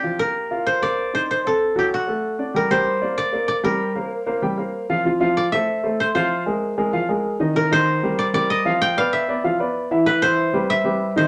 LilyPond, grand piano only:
\new Staff \with { instrumentName = "Grand piano" } { \time 4/4 \key f \major \tempo 4 = 191 <f f'>8 <bes bes'>4 <f' f''>4 <bes bes'>4 <ees' ees''>8~ | <ees' ees''>8 <c' c''>4 <fis fis'>4 <a a'>4 <d' d''>8 | \key g \minor <g g' g''>8 <g g' g''>4 <bes bes' d''>4 <bes bes' d''>4 <g g' g''>8~ | <g g' g''>8 <bes bes' c''>4 <bes bes' c''>8 <g g' g''>8 <bes bes' c''>4 <f f' f''>8 |
<f f' f''>8 <f f' f''>4 <a a' c''>4 <a a' c''>4 <f f' f''>8~ | <f f' f''>8 <aes aes' bes'>4 <aes aes' bes'>8 <f f' f''>8 <aes aes' bes'>4 <ees ees' ees''>8 | <ees ees' ees''>8 <ees ees' ees''>4 <g g' bes'>4 <g g' bes'>4 <f f' f''>8~ | <f f' f''>8 <b b' d''>4 <b b' d''>8 <f f' f''>8 <b b' d''>4 <e e' e''>8 |
<e e' e''>8 <e e' e''>4 <g g' b'>4 <g g' b'>4 <ees ees' ees''>8 | }